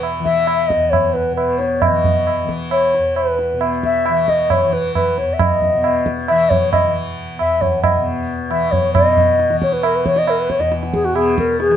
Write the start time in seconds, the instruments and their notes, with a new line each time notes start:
Already playing: tanpura E2 B2 E3
0.03 tabla na
0.19 tanpura E3
0.24 bansuri E5, tabla ke
0.47 tabla na
0.68 bansuri D#5, tabla ke
0.76 tanpura E2
0.90 bansuri C#5, tabla na, tabla ge
1.13 bansuri B4, tabla te
1.31 tanpura B2
1.35 bansuri B4, tabla na
1.58 bansuri C#5, tabla te
1.81 bansuri D#5, tabla na, tabla ge
1.87 tanpura E3
2.04 tabla ge
2.27 tabla na
2.43 tanpura E3
2.49 tabla ke
2.71 bansuri C#5, tabla na
2.94 tabla te
2.98 tanpura E2
3.16 bansuri B4, tabla na
3.39 tabla te
3.53 tanpura B2
3.61 tabla na
3.83 bansuri E5, tabla ke
4.06 tanpura E3, tabla na
4.28 bansuri D#5, tabla ke
4.50 bansuri C#5, tabla na, tabla ge
4.64 tanpura E3
4.73 bansuri B4, tabla te
4.95 bansuri B4, tabla na, tabla ge
5.18 tanpura E2, bansuri C#5, tabla te
5.33 bansuri E5
5.39 bansuri D#5, tabla na, tabla ge
5.62 tabla ge
5.73 tanpura B2
5.84 tabla na
6.06 tabla ke
6.28 tanpura E3, bansuri E5, tabla na
6.50 bansuri C#5, tabla tin, tabla ge
6.72 bansuri D#5, tabla na, tabla ge
6.85 tanpura E3
7.39 tanpura E2, bansuri E5, tabla na
7.61 bansuri C#5, tabla tin, tabla ge
7.83 bansuri D#5, tabla na, tabla ge
7.95 tanpura B2
8.50 tanpura E3, bansuri E5, tabla na
8.72 bansuri C#5, tabla tin, tabla ge
8.93 tanpura B2, bansuri D#5, tabla na, tabla ge
9.17 tabla ge
9.40 tabla te
9.49 tanpura E3, tabla te
9.62 bansuri C#5, tabla ke
9.72 bansuri B4, tabla te
9.83 bansuri A#4, tabla na
9.96 bansuri B4
10.04 tanpura E3, bansuri C#5, tabla ke
10.16 bansuri D#5, tabla te
10.27 bansuri A#4, tabla na
10.40 bansuri B4
10.50 bansuri C#5, tabla ke
10.59 tanpura E2, bansuri D#5, tabla te
10.72 tabla te
10.83 tabla te
10.94 bansuri G#4, tabla ke
11.04 bansuri F#4, tabla te
11.13 tanpura B2, bansuri G#4, tabla na
11.38 bansuri A#4, tabla ke
11.60 bansuri G#4, tabla te
11.69 tanpura E3, tabla te